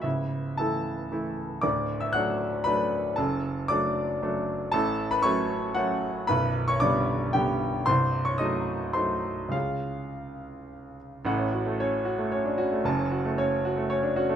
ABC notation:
X:1
M:3/4
L:1/16
Q:1/4=114
K:Dlyd
V:1 name="Grand piano"
[Ee]4 [Aa]8 | [dd']3 [ee'] [ff']4 [Bb]4 | [Aa]4 [dd']8 | [K:F#m] [Aa]3 [Bb] [cc']4 [Ff]4 |
[Bb]3 [cc'] [dd']4 [=G=g]4 | [=c=c']3 [^c^c'] [_e_e']4 [=c=c']4 | [^E^e]8- [Ee]2 z2 | f2 F2 c2 F2 c2 F2 |
a2 F2 c2 F2 c2 F2 |]
V:2 name="Grand piano"
[C,,,C,,]4 [E,A,E]4 [E,A,E]4 | [D,,,D,,]4 [F,A,D]4 [F,A,D]4 | [F,,,F,,]4 [F,A,D]4 [F,A,D]4 | [K:F#m] [A,,,A,,]4 [F,A,C]4 [F,A,C]4 |
[B,,,,B,,,]4 [D,=G,B,]4 [D,G,B,]4 | [=C,,,=C,,]4 [_G,A,_E]4 [G,A,E]4 | [C,,G,C]12 | [A,,,A,,] C2 A, C2 z A, C D C A, |
[F,,,F,,] C2 A, C2 z A, C D C A, |]